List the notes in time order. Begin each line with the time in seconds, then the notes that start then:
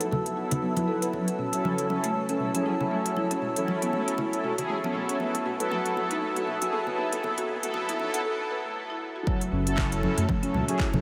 Already playing: F#4 B4 A5 E6
0.01 F#1 A4, closed hi-hat
0.12 A4, mid tom, low conga
0.26 F#3 B3 E4 A4, closed hi-hat
0.37 B1 F#3 B3 E4 F#4 A4
0.51 D#4, closed hi-hat, low conga
0.62 B3, mid tom
0.77 F#3 B3 E4 B4, closed hi-hat, high conga
0.88 A4
1.02 F#1 B4, closed hi-hat
1.13 F#3 C#4 E4 A4 C#5, mid tom, high conga
1.28 closed hi-hat
1.39 F#1 C#4, mid tom
1.53 F#3 C#4 E4 A4, closed hi-hat
1.64 C#3, mid tom, high conga
1.78 F#1, closed hi-hat
1.90 F#3 C#4 E4 A4, mid tom, high conga
2.04 F#2 A3, closed hi-hat
2.15 mid tom
2.29 F#3 C#4 E4 A4, closed hi-hat
2.40 C#2, mid tom
2.55 F#3 C#4 E4 G#4, closed hi-hat, high conga
2.66 E4, mid tom
2.80 F#3 C#4 E4 A4, low conga
2.91 A3, mid tom
3.06 F#1, closed hi-hat
3.16 F#3 C#4 E4 A4, mid tom, high conga
3.31 C#4, closed hi-hat
3.42 F#1, mid tom
3.56 E3 F#3 C#4 E4 A4, closed hi-hat
3.68 mid tom, high conga
3.82 B3, closed hi-hat
3.93 F#3 A3 C#4 E4 A4, mid tom, high conga
4.08 F#2 E4, closed hi-hat
4.18 E4, mid tom, low conga
4.33 F#3 C#4 E4 A4, closed hi-hat
4.44 C#2 F#4, mid tom
4.58 E3 F#3 C#4 E4 G#4, closed hi-hat, low conga
4.70 mid tom
4.84 F#3 B3 C#4 E4 A4, high conga
4.95 mid tom
5.09 B1 C#4, closed hi-hat
5.20 F#3 B3 E4 F#4 A4 B4 A5 E6, mid tom, high conga
5.35 closed hi-hat, mid tom
5.46 B1 F#4, mid tom
5.60 F#3 B3 E4 A4, closed hi-hat, mid tom
5.71 F#3, mid tom, high conga
5.86 B1, closed hi-hat, mid tom
5.96 F#3 B3 E4 F#4 A4, mid tom, high conga
6.11 D#4, closed hi-hat, mid tom
6.22 mid tom
6.36 F#3 B3 E4 F#4 A4, closed hi-hat, mid tom
6.47 mid tom
6.61 F#3 B3 E4 F#4 G#4, closed hi-hat, mid tom, high conga
6.73 A4, mid tom
6.87 B1 F#3 B3 E4 A4, mid tom, low conga
6.98 D#4, mid tom
7.13 B1, closed hi-hat, mid tom
7.23 F#3 B3 E4 A4, mid tom, high conga, low conga
7.31 mid tom
7.38 F#4, closed hi-hat, mid tom
7.43 mid tom
7.49 B1, mid tom
7.56 mid tom
7.63 F#3 A3 B3 E4 A4, closed hi-hat, mid tom
7.69 mid tom
7.74 mid tom, high conga
7.82 mid tom
7.88 B1 E4, closed hi-hat, mid tom
7.94 mid tom
7.99 F#3 B3 D#4 E4 A4, mid tom, high conga
8.07 mid tom
8.14 F#1 A4, closed hi-hat, mid tom
8.20 mid tom
8.25 A4
8.51 B4
8.65 A3
8.90 E4
9.16 F#4
9.27 F#3 C#4 E4 F#4 A4 C#5 A5 E6, kick
9.41 closed hi-hat
9.52 F#1 C#4
9.67 F#3 C#4 E4 A4, closed hi-hat
9.78 C#3, finger snap, kick, clap
9.92 F#1, closed hi-hat
10.03 F#3 C#4 E4 A4, high conga
10.18 F#2 A3, closed hi-hat
10.29 kick, high conga
10.43 F#3 C#4 E4 A4, closed hi-hat
10.54 C#2, mid tom, high conga
10.68 F#3 C#4 E4 G#4, closed hi-hat
10.79 E4, finger snap, kick, clap
10.93 F#1 F#3 C#4 E4 A4, high conga, low conga